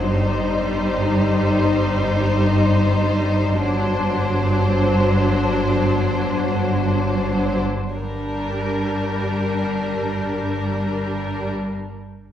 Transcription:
0.05 3.57 G1 soft
0.05 3.56 G2 soft
0.05 3.60 G3 soft
0.05 3.56 D#4 soft
0.05 3.56 C5 soft
3.61 7.63 G1 soft
3.61 7.62 G2 soft
3.61 7.62 F#3 soft
3.61 7.62 D4 soft
3.61 7.62 C5 soft
7.92 11.51 G1 soft
7.92 11.51 G2 soft
7.92 11.52 G3 soft
7.92 11.50 D4 soft
7.92 11.51 A#4 soft

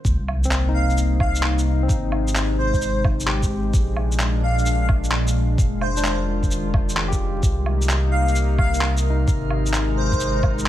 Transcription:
0.03 1.88 C2 medium
0.03 3.70 C3 medium
0.03 1.87 A#3 medium
0.03 3.70 D#4 medium
0.03 kick loud
0.03 sub drop medium
0.03 shaker medium
0.28 low woodblock medium
0.44 1.41 C4 medium
0.44 shaker medium
0.51 clap loud
0.51 shaker medium
0.69 1.64 D#4 medium
0.74 0.99 F5 medium
0.90 shaker soft
0.97 shaker medium
1.20 1.45 F5 loud
1.20 kick loud
1.20 low woodblock medium
1.35 shaker medium
1.43 clap loud
1.58 shaker medium
1.83 2.10 C4 medium
1.88 3.72 G#1 medium
1.88 7.39 G#3 medium
1.88 2.13 D#4 medium
1.88 kick loud
1.88 shaker medium
2.12 low woodblock medium
2.28 shaker medium
2.36 clap loud
2.36 shaker medium
2.58 3.04 C5 loud
2.74 kick medium
2.74 shaker soft
2.81 shaker medium
3.04 kick loud
3.04 low woodblock medium
3.20 shaker medium
3.26 3.93 G4 medium
3.26 clap loud
3.43 kick medium
3.43 shaker medium
3.73 5.57 A#1 medium
3.73 5.56 A#2 medium
3.73 5.56 D4 medium
3.73 kick loud
3.73 shaker medium
3.97 low woodblock medium
4.12 shaker medium
4.20 clap loud
4.20 shaker medium
4.43 4.66 F5 medium
4.58 shaker soft
4.66 4.76 F5 medium
4.66 shaker medium
4.82 4.87 F5 medium
4.89 kick loud
4.89 low woodblock medium
5.04 shaker medium
5.12 clap loud
5.27 shaker medium
5.58 7.41 F1 medium
5.58 7.41 D#3 medium
5.58 7.41 F4 medium
5.58 kick loud
5.58 shaker medium
5.81 6.20 C5 medium
5.81 low woodblock medium
5.97 6.92 D4 medium
5.97 shaker medium
6.05 clap loud
6.05 shaker medium
6.43 kick medium
6.43 shaker soft
6.51 shaker medium
6.74 kick loud
6.74 low woodblock soft
6.89 shaker medium
6.97 clap loud
7.08 7.62 G4 medium
7.12 kick medium
7.12 shaker medium
7.43 9.26 C2 medium
7.43 10.69 C3 medium
7.43 9.26 A#3 medium
7.43 9.26 D#4 medium
7.43 10.69 A#4 medium
7.43 kick loud
7.43 shaker medium
7.66 low woodblock soft
7.82 shaker medium
7.89 clap loud
7.89 shaker soft
8.11 8.36 F5 medium
8.28 shaker soft
8.35 shaker medium
8.58 8.83 F5 medium
8.58 kick loud
8.58 low woodblock medium
8.74 shaker medium
8.81 clap loud
8.97 shaker medium
9.10 9.48 D#4 medium
9.28 10.69 G#1 medium
9.28 10.69 G#3 medium
9.28 10.69 D#4 loud
9.28 kick loud
9.28 shaker medium
9.51 low woodblock medium
9.66 shaker medium
9.74 clap loud
9.74 shaker medium
9.97 10.43 C5 loud
10.12 kick medium
10.12 shaker soft
10.20 shaker soft
10.43 kick loud
10.43 low woodblock medium
10.59 shaker medium

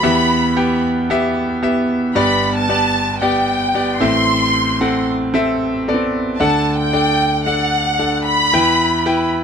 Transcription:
0.00 2.11 E2 medium
0.00 2.11 E3 medium
0.00 0.46 B3 loud
0.00 0.46 G4 medium
0.00 0.46 E5 loud
0.00 0.81 B5 medium
0.56 0.99 B3 medium
0.56 0.99 G4 medium
0.56 0.99 G5 medium
1.10 1.52 B3 medium
1.10 1.53 G4 medium
1.10 1.53 E5 loud
1.63 2.05 B3 medium
1.63 2.05 G4 medium
1.63 2.06 E5 medium
2.15 3.97 G1 medium
2.15 3.97 G2 medium
2.15 2.58 B3 medium
2.15 2.58 G4 medium
2.15 2.58 D5 loud
2.15 2.52 B5 medium
2.56 3.18 A5 loud
2.69 3.12 B3 medium
2.69 3.11 G4 medium
2.69 3.12 D5 medium
3.21 3.64 B3 medium
3.21 3.65 G4 medium
3.21 3.65 D5 medium
3.21 3.97 G5 medium
3.74 4.01 B3 medium
3.74 4.01 G4 medium
3.74 4.01 D5 medium
4.00 6.09 A1 medium
4.00 6.09 A2 medium
4.00 4.65 C4 medium
4.00 4.65 A4 medium
4.00 4.66 E5 loud
4.00 5.07 C6 loud
4.81 5.24 C4 medium
4.81 5.24 A4 medium
4.81 5.24 F#5 medium
5.34 5.77 C4 medium
5.34 5.77 A4 medium
5.34 5.77 E5 loud
5.88 5.94 B3 medium
5.88 6.30 A4 medium
5.88 6.31 D5 medium
5.94 6.34 C4 medium
6.39 8.49 D2 medium
6.39 8.48 D3 medium
6.39 6.83 D4 medium
6.39 6.83 A4 medium
6.39 6.83 F#5 loud
6.39 6.76 A5 medium
6.79 7.42 G5 medium
6.93 7.36 D4 medium
6.93 7.36 A4 medium
6.93 7.36 D5 medium
7.46 7.89 D4 medium
7.46 7.89 A4 medium
7.46 8.22 F#5 medium
7.46 7.90 F#5 medium
7.99 8.42 D4 medium
7.99 8.42 A4 medium
7.99 8.43 F#5 medium
8.27 9.29 B5 loud
8.53 9.44 E2 medium
8.53 9.44 E3 medium
8.53 8.96 E4 medium
8.53 8.96 B4 medium
8.53 8.96 G5 loud
9.06 9.44 E4 medium
9.06 9.44 B4 medium
9.06 9.44 G5 medium

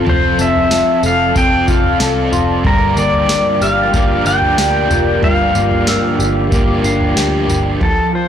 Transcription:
0.00 0.38 C4 medium
0.00 0.71 F4 medium
0.00 2.61 F4 medium
0.00 1.02 A4 medium
0.00 2.61 A4 medium
0.00 2.61 A5 medium
0.05 0.35 F1 loud
0.05 1.34 F3 medium
0.05 2.67 F3 medium
0.05 1.34 C4 medium
0.05 1.36 F4 medium
0.05 7.77 D5 medium
0.05 floor tom loud
0.09 1.36 A4 medium
0.09 0.41 C5 medium
0.39 0.82 F1 medium
0.39 1.34 C4 medium
0.39 1.07 E5 loud
0.39 tambourine medium
0.55 floor tom medium
0.71 1.67 F4 medium
0.71 2.26 A5 medium
0.71 snare loud
0.71 tambourine medium
1.03 1.32 F1 loud
1.03 1.99 A4 medium
1.03 1.38 F5 medium
1.03 tambourine medium
1.34 1.64 F1 loud
1.34 1.99 F3 medium
1.34 1.99 C4 medium
1.34 2.71 C4 medium
1.34 2.01 F4 medium
1.34 2.01 A4 medium
1.34 1.67 G5 loud
1.34 kick medium
1.34 floor tom medium
1.34 tambourine medium
1.68 1.96 F1 loud
1.68 2.31 F4 medium
1.68 1.99 F5 medium
1.68 kick loud
1.68 tambourine medium
1.84 floor tom medium
1.99 2.29 C2 loud
1.99 2.65 F3 medium
1.99 2.65 C4 medium
1.99 2.66 F4 medium
1.99 2.71 A4 medium
1.99 2.66 A4 medium
1.99 snare loud
1.99 tambourine medium
2.32 2.61 F1 medium
2.32 3.28 F4 medium
2.32 2.93 C6 medium
2.32 floor tom medium
2.32 tambourine medium
2.63 2.93 G1 loud
2.63 3.93 G2 medium
2.63 5.22 G2 medium
2.63 3.93 D3 medium
2.63 3.93 F3 medium
2.63 3.93 A#3 loud
2.63 3.94 D4 medium
2.63 7.77 F4 medium
2.63 7.77 A#4 medium
2.63 2.99 A#4 medium
2.63 7.77 G5 medium
2.63 kick loud
2.63 floor tom loud
2.68 3.95 G4 medium
2.96 3.39 G1 medium
2.96 3.92 A#3 medium
2.96 3.64 D5 loud
2.96 tambourine medium
3.13 floor tom medium
3.29 4.25 D4 medium
3.29 snare loud
3.29 tambourine loud
3.61 3.90 G1 medium
3.61 4.57 G4 medium
3.61 4.26 F5 loud
3.61 5.16 F6 medium
3.61 tambourine medium
3.82 5.35 A6 medium
3.93 4.22 G1 loud
3.93 4.57 F3 medium
3.93 5.54 A#3 medium
3.93 4.58 A#3 medium
3.93 4.59 D4 medium
3.93 4.59 G4 medium
3.93 kick medium
3.93 floor tom medium
3.93 tambourine medium
4.25 4.54 G1 loud
4.25 4.89 D4 medium
4.25 5.24 G5 loud
4.25 tambourine medium
4.42 floor tom medium
4.58 4.86 D2 medium
4.58 5.23 F3 medium
4.58 5.23 A#3 medium
4.58 5.24 D4 medium
4.58 6.18 G4 medium
4.58 5.24 G4 medium
4.58 snare loud
4.58 tambourine medium
4.91 5.19 F1 medium
4.91 5.86 D4 medium
4.91 floor tom medium
4.91 tambourine medium
5.21 5.51 G1 loud
5.21 6.51 G2 medium
5.21 7.81 G2 medium
5.21 6.52 D3 medium
5.21 6.51 F3 medium
5.21 6.51 A#3 medium
5.21 7.13 F5 medium
5.21 floor tom loud
5.26 6.52 D4 medium
5.26 6.53 G4 medium
5.55 5.97 G1 medium
5.55 6.51 A#3 medium
5.55 tambourine medium
5.71 floor tom medium
5.87 6.83 D4 medium
5.87 7.42 E6 medium
5.87 snare loud
5.87 tambourine medium
6.19 6.48 G1 medium
6.19 7.15 G4 medium
6.19 tambourine medium
6.51 6.80 G1 loud
6.51 7.16 F3 medium
6.51 7.87 A#3 medium
6.51 7.16 A#3 medium
6.51 7.17 D4 medium
6.51 7.18 G4 medium
6.51 kick medium
6.51 floor tom medium
6.51 tambourine medium
6.84 7.13 G1 loud
6.84 7.47 D4 medium
6.84 8.10 C7 medium
6.84 tambourine medium
7.00 floor tom medium
7.16 7.45 D2 medium
7.16 8.28 F3 medium
7.16 7.81 A#3 medium
7.16 7.82 D4 medium
7.16 7.87 G4 medium
7.16 7.82 G4 medium
7.16 snare loud
7.16 tambourine medium
7.48 7.77 G1 medium
7.48 7.87 D4 medium
7.48 floor tom medium
7.48 tambourine medium
7.81 8.28 F3 medium
7.81 8.28 C4 medium
7.81 8.28 F4 medium
7.81 8.15 A4 medium
7.81 8.28 A5 medium
7.81 kick medium
7.81 floor tom medium
8.13 8.28 F4 soft
8.13 8.28 C5 medium

